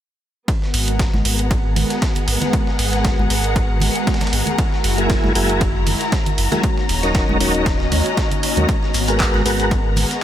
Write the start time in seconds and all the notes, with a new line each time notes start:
0.48 G#3 B3 F#4 A#4, kick, closed hi-hat, ride
0.62 F#5, snare
0.72 G#1 G#4, open hi-hat, ride
0.76 A#5
0.88 closed hi-hat
0.99 kick, snare, closed hi-hat, ride
1.13 G#1, snare, high conga
1.25 G#1, open hi-hat, ride
1.39 closed hi-hat
1.51 kick, closed hi-hat, ride
1.76 open hi-hat, ride, high conga, low conga
1.90 snare, closed hi-hat
2.02 kick, snare, closed hi-hat, ride
2.15 closed hi-hat, ride, low conga
2.28 G#1, open hi-hat, ride
2.42 snare, closed hi-hat, high conga, low conga
2.53 kick, closed hi-hat, ride
2.67 snare
2.79 G#1, open hi-hat, ride
2.93 snare, closed hi-hat
3.05 kick, snare, closed hi-hat, ride
3.19 G#1, high conga
3.30 G#1, snare, open hi-hat, ride
3.44 closed hi-hat
3.56 kick, closed hi-hat, ride
3.80 open hi-hat, ride, high conga, low conga
3.96 closed hi-hat
4.07 kick, snare, closed hi-hat, ride
4.14 snare, ride
4.21 snare, closed hi-hat, ride, low conga
4.27 snare, ride
4.33 G#1, open hi-hat, ride
4.46 closed hi-hat, high conga, low conga
4.58 E4, kick, closed hi-hat, ride
4.72 snare
4.84 F#1, open hi-hat, ride
4.98 F#3 A#3 E4 G#4, closed hi-hat
5.10 kick, snare, closed hi-hat, ride
5.24 F#1, snare, high conga
5.35 F#1 F#3 A#3 E4 G#4, open hi-hat, ride
5.50 closed hi-hat
5.61 kick, closed hi-hat, ride
5.86 open hi-hat, ride, high conga, low conga
6.01 snare, closed hi-hat
6.12 kick, snare, closed hi-hat, ride
6.26 closed hi-hat, ride, low conga
6.38 F#1, open hi-hat, ride
6.51 F#3 A#3 E4 G#4, snare, closed hi-hat, high conga, low conga
6.63 A#3 C#4 D#4 C#5, kick, closed hi-hat, ride
6.78 snare
6.89 D#1 F#4, open hi-hat, ride
6.96 D#5
7.03 F#3 C#4 D#4 A#4, snare, closed hi-hat
7.15 kick, snare, closed hi-hat, ride
7.29 D#1, high conga
7.40 D#1 F#3 C#4 D#4 A#4, snare, open hi-hat, ride
7.55 closed hi-hat
7.66 kick, snare, closed hi-hat, ride
7.80 snare
7.92 D#2, open hi-hat, ride, high conga, low conga
8.06 closed hi-hat
8.17 kick, snare, closed hi-hat, ride
8.31 closed hi-hat, low conga
8.43 open hi-hat, ride
8.57 D#2 F#3 C#4 D#4 A#4, closed hi-hat, high conga, low conga
8.69 G#3 B3 A#4, kick, closed hi-hat, ride, shekere
8.83 snare
8.94 G#1, open hi-hat, ride, shekere
9.01 G#4
9.07 G#3 B3 F#4 A#4, closed hi-hat, shekere
9.20 kick, snare, clap, closed hi-hat, ride, shekere
9.31 G#1 F#5, snare, high conga
9.45 G#1 G#3 B3 F#4 A#4, open hi-hat, ride, shekere
9.60 closed hi-hat, shekere
9.71 kick, closed hi-hat, ride, shekere
9.96 open hi-hat, ride, high conga, low conga, shekere
10.11 snare, closed hi-hat, shekere